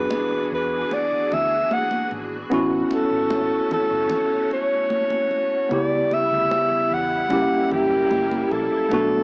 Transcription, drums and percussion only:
0.10 high conga medium
0.91 muted conga medium
1.32 muted conga soft
1.32 low conga medium
1.71 high conga medium
1.91 high conga medium
2.11 high conga soft
2.51 muted conga soft
2.91 muted conga soft
3.31 high conga medium
3.71 low conga medium
4.10 muted conga medium
4.10 low conga medium
4.51 muted conga soft
4.90 high conga medium
5.11 high conga medium
5.31 high conga soft
5.71 muted conga medium
6.11 muted conga medium
6.51 high conga medium
7.30 muted conga medium
7.71 low conga medium
8.11 high conga medium
8.31 high conga medium
8.51 high conga soft
8.91 muted conga medium

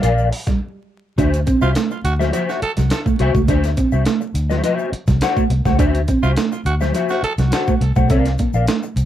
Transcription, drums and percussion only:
0.03 closed hi-hat medium
0.03 shaker medium
0.18 shaker soft
0.32 open hi-hat medium
0.47 kick loud
0.47 snare soft
0.47 closed hi-hat medium
0.47 shaker medium
1.18 kick loud
1.18 closed hi-hat medium
1.18 shaker medium
1.34 closed hi-hat medium
1.34 shaker medium
1.47 kick medium
1.47 closed hi-hat medium
1.47 shaker medium
1.61 shaker medium
1.75 snare loud
1.75 closed hi-hat loud
1.75 shaker medium
1.91 shaker medium
2.05 closed hi-hat medium
2.05 shaker medium
2.21 snare soft
2.21 shaker medium
2.33 closed hi-hat medium
2.33 shaker medium
2.49 snare soft
2.49 shaker medium
2.62 closed hi-hat medium
2.77 snare soft
2.77 closed hi-hat medium
2.77 shaker medium
2.90 snare loud
2.90 closed hi-hat medium
2.90 shaker medium
3.06 kick medium
3.06 shaker medium
3.19 closed hi-hat medium
3.35 kick loud
3.35 shaker medium
3.48 kick loud
3.48 closed hi-hat medium
3.48 shaker medium
3.64 snare soft
3.64 closed hi-hat soft
3.64 shaker medium
3.77 kick medium
3.77 closed hi-hat medium
3.77 shaker medium
3.92 shaker medium
4.05 snare loud
4.05 closed hi-hat medium
4.05 shaker medium
4.21 shaker medium
4.35 closed hi-hat medium
4.35 shaker medium
4.50 snare soft
4.50 shaker medium
4.64 closed hi-hat medium
4.64 shaker medium
4.79 shaker medium
4.93 closed hi-hat medium
5.07 kick loud
5.07 snare soft
5.07 closed hi-hat soft
5.07 shaker medium
5.21 snare loud
5.21 closed hi-hat loud
5.21 shaker medium
5.37 kick medium
5.37 shaker medium
5.50 closed hi-hat medium
5.65 kick loud
5.65 snare soft
5.65 shaker medium
5.79 kick loud
5.79 closed hi-hat medium
5.79 shaker medium
5.95 closed hi-hat medium
5.95 shaker medium
6.08 kick loud
6.08 closed hi-hat medium
6.08 shaker medium
6.23 shaker medium
6.36 snare loud
6.36 closed hi-hat medium
6.36 shaker medium
6.52 shaker medium
6.66 closed hi-hat medium
6.66 shaker medium
6.81 snare soft
6.81 shaker medium
6.94 closed hi-hat medium
6.94 shaker medium
7.09 snare soft
7.09 shaker medium
7.24 closed hi-hat medium
7.38 snare soft
7.38 closed hi-hat medium
7.38 shaker medium
7.52 snare loud
7.52 closed hi-hat loud
7.52 shaker medium
7.67 kick medium
7.67 shaker soft
7.81 closed hi-hat medium
7.96 kick loud
7.96 shaker medium
8.09 kick loud
8.09 closed hi-hat medium
8.09 shaker medium
8.25 snare soft
8.25 closed hi-hat medium
8.25 shaker medium
8.38 kick medium
8.38 closed hi-hat medium
8.38 shaker medium
8.53 shaker medium
8.68 snare loud
8.68 closed hi-hat medium
8.68 shaker medium
8.83 shaker medium
8.97 closed hi-hat medium
8.97 shaker medium

